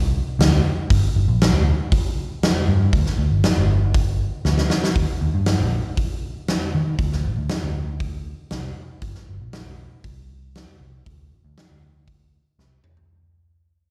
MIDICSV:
0, 0, Header, 1, 3, 480
1, 0, Start_track
1, 0, Key_signature, -2, "minor"
1, 0, Tempo, 508044
1, 847, Time_signature, 4, 2, 24, 8
1, 13133, End_track
2, 0, Start_track
2, 0, Title_t, "Picked electric bass"
2, 0, Program_c, 0, 34
2, 0, Note_on_c, 0, 36, 77
2, 183, Note_off_c, 0, 36, 0
2, 371, Note_on_c, 0, 38, 92
2, 556, Note_off_c, 0, 38, 0
2, 857, Note_on_c, 0, 31, 90
2, 946, Note_off_c, 0, 31, 0
2, 1097, Note_on_c, 0, 31, 70
2, 1187, Note_off_c, 0, 31, 0
2, 1210, Note_on_c, 0, 34, 78
2, 1454, Note_off_c, 0, 34, 0
2, 1454, Note_on_c, 0, 38, 71
2, 1639, Note_off_c, 0, 38, 0
2, 2533, Note_on_c, 0, 43, 86
2, 2718, Note_off_c, 0, 43, 0
2, 2772, Note_on_c, 0, 38, 77
2, 2864, Note_off_c, 0, 38, 0
2, 3005, Note_on_c, 0, 38, 80
2, 3099, Note_off_c, 0, 38, 0
2, 3132, Note_on_c, 0, 31, 82
2, 3223, Note_off_c, 0, 31, 0
2, 3376, Note_on_c, 0, 31, 72
2, 4028, Note_off_c, 0, 31, 0
2, 4204, Note_on_c, 0, 38, 85
2, 4392, Note_off_c, 0, 38, 0
2, 4687, Note_on_c, 0, 39, 79
2, 4780, Note_off_c, 0, 39, 0
2, 4924, Note_on_c, 0, 39, 82
2, 5018, Note_off_c, 0, 39, 0
2, 5045, Note_on_c, 0, 43, 81
2, 5297, Note_on_c, 0, 34, 76
2, 5311, Note_off_c, 0, 43, 0
2, 5480, Note_off_c, 0, 34, 0
2, 6375, Note_on_c, 0, 51, 86
2, 6559, Note_off_c, 0, 51, 0
2, 6607, Note_on_c, 0, 38, 79
2, 6848, Note_on_c, 0, 33, 82
2, 6863, Note_off_c, 0, 38, 0
2, 6941, Note_off_c, 0, 33, 0
2, 6968, Note_on_c, 0, 38, 84
2, 7061, Note_off_c, 0, 38, 0
2, 7215, Note_on_c, 0, 38, 74
2, 7868, Note_off_c, 0, 38, 0
2, 8050, Note_on_c, 0, 36, 92
2, 8236, Note_off_c, 0, 36, 0
2, 8521, Note_on_c, 0, 31, 83
2, 8617, Note_off_c, 0, 31, 0
2, 8777, Note_on_c, 0, 31, 81
2, 8867, Note_off_c, 0, 31, 0
2, 8888, Note_on_c, 0, 34, 73
2, 9131, Note_off_c, 0, 34, 0
2, 9131, Note_on_c, 0, 35, 76
2, 9317, Note_off_c, 0, 35, 0
2, 9485, Note_on_c, 0, 36, 91
2, 10048, Note_off_c, 0, 36, 0
2, 10201, Note_on_c, 0, 36, 87
2, 10391, Note_off_c, 0, 36, 0
2, 10458, Note_on_c, 0, 38, 80
2, 10697, Note_off_c, 0, 38, 0
2, 10697, Note_on_c, 0, 33, 86
2, 10787, Note_off_c, 0, 33, 0
2, 10814, Note_on_c, 0, 38, 78
2, 10905, Note_off_c, 0, 38, 0
2, 11056, Note_on_c, 0, 38, 72
2, 11709, Note_off_c, 0, 38, 0
2, 11894, Note_on_c, 0, 36, 95
2, 12079, Note_off_c, 0, 36, 0
2, 13133, End_track
3, 0, Start_track
3, 0, Title_t, "Drums"
3, 381, Note_on_c, 9, 46, 47
3, 385, Note_on_c, 9, 38, 97
3, 475, Note_off_c, 9, 46, 0
3, 479, Note_off_c, 9, 38, 0
3, 851, Note_on_c, 9, 46, 54
3, 854, Note_on_c, 9, 36, 109
3, 946, Note_off_c, 9, 46, 0
3, 948, Note_off_c, 9, 36, 0
3, 1336, Note_on_c, 9, 46, 53
3, 1340, Note_on_c, 9, 38, 103
3, 1430, Note_off_c, 9, 46, 0
3, 1434, Note_off_c, 9, 38, 0
3, 1814, Note_on_c, 9, 36, 97
3, 1817, Note_on_c, 9, 46, 49
3, 1908, Note_off_c, 9, 36, 0
3, 1911, Note_off_c, 9, 46, 0
3, 2296, Note_on_c, 9, 46, 44
3, 2300, Note_on_c, 9, 38, 100
3, 2390, Note_off_c, 9, 46, 0
3, 2394, Note_off_c, 9, 38, 0
3, 2766, Note_on_c, 9, 46, 47
3, 2768, Note_on_c, 9, 36, 105
3, 2861, Note_off_c, 9, 46, 0
3, 2863, Note_off_c, 9, 36, 0
3, 2892, Note_on_c, 9, 38, 32
3, 2987, Note_off_c, 9, 38, 0
3, 3246, Note_on_c, 9, 46, 46
3, 3250, Note_on_c, 9, 38, 114
3, 3341, Note_off_c, 9, 46, 0
3, 3344, Note_off_c, 9, 38, 0
3, 3724, Note_on_c, 9, 46, 44
3, 3727, Note_on_c, 9, 36, 109
3, 3819, Note_off_c, 9, 46, 0
3, 3821, Note_off_c, 9, 36, 0
3, 4204, Note_on_c, 9, 38, 56
3, 4298, Note_off_c, 9, 38, 0
3, 4325, Note_on_c, 9, 38, 60
3, 4419, Note_off_c, 9, 38, 0
3, 4441, Note_on_c, 9, 38, 79
3, 4535, Note_off_c, 9, 38, 0
3, 4570, Note_on_c, 9, 38, 82
3, 4664, Note_off_c, 9, 38, 0
3, 4680, Note_on_c, 9, 46, 51
3, 4683, Note_on_c, 9, 36, 101
3, 4774, Note_off_c, 9, 46, 0
3, 4778, Note_off_c, 9, 36, 0
3, 5159, Note_on_c, 9, 46, 54
3, 5162, Note_on_c, 9, 38, 109
3, 5253, Note_off_c, 9, 46, 0
3, 5257, Note_off_c, 9, 38, 0
3, 5642, Note_on_c, 9, 46, 46
3, 5644, Note_on_c, 9, 36, 97
3, 5737, Note_off_c, 9, 46, 0
3, 5738, Note_off_c, 9, 36, 0
3, 6123, Note_on_c, 9, 46, 46
3, 6127, Note_on_c, 9, 38, 99
3, 6217, Note_off_c, 9, 46, 0
3, 6221, Note_off_c, 9, 38, 0
3, 6601, Note_on_c, 9, 46, 45
3, 6602, Note_on_c, 9, 36, 93
3, 6695, Note_off_c, 9, 46, 0
3, 6696, Note_off_c, 9, 36, 0
3, 6731, Note_on_c, 9, 38, 29
3, 6825, Note_off_c, 9, 38, 0
3, 7078, Note_on_c, 9, 46, 48
3, 7082, Note_on_c, 9, 38, 105
3, 7172, Note_off_c, 9, 46, 0
3, 7176, Note_off_c, 9, 38, 0
3, 7558, Note_on_c, 9, 46, 44
3, 7561, Note_on_c, 9, 36, 99
3, 7653, Note_off_c, 9, 46, 0
3, 7655, Note_off_c, 9, 36, 0
3, 8035, Note_on_c, 9, 46, 49
3, 8039, Note_on_c, 9, 38, 101
3, 8130, Note_off_c, 9, 46, 0
3, 8134, Note_off_c, 9, 38, 0
3, 8517, Note_on_c, 9, 46, 51
3, 8522, Note_on_c, 9, 36, 95
3, 8612, Note_off_c, 9, 46, 0
3, 8617, Note_off_c, 9, 36, 0
3, 8644, Note_on_c, 9, 38, 33
3, 8738, Note_off_c, 9, 38, 0
3, 9003, Note_on_c, 9, 46, 56
3, 9006, Note_on_c, 9, 38, 109
3, 9097, Note_off_c, 9, 46, 0
3, 9101, Note_off_c, 9, 38, 0
3, 9485, Note_on_c, 9, 46, 51
3, 9488, Note_on_c, 9, 36, 101
3, 9580, Note_off_c, 9, 46, 0
3, 9582, Note_off_c, 9, 36, 0
3, 9971, Note_on_c, 9, 46, 46
3, 9975, Note_on_c, 9, 38, 96
3, 10065, Note_off_c, 9, 46, 0
3, 10069, Note_off_c, 9, 38, 0
3, 10453, Note_on_c, 9, 36, 106
3, 10455, Note_on_c, 9, 46, 48
3, 10547, Note_off_c, 9, 36, 0
3, 10550, Note_off_c, 9, 46, 0
3, 10934, Note_on_c, 9, 46, 50
3, 10938, Note_on_c, 9, 38, 109
3, 11028, Note_off_c, 9, 46, 0
3, 11032, Note_off_c, 9, 38, 0
3, 11408, Note_on_c, 9, 46, 46
3, 11410, Note_on_c, 9, 36, 99
3, 11502, Note_off_c, 9, 46, 0
3, 11504, Note_off_c, 9, 36, 0
3, 11897, Note_on_c, 9, 38, 52
3, 11991, Note_off_c, 9, 38, 0
3, 12130, Note_on_c, 9, 45, 82
3, 12224, Note_off_c, 9, 45, 0
3, 12254, Note_on_c, 9, 43, 88
3, 12348, Note_off_c, 9, 43, 0
3, 13133, End_track
0, 0, End_of_file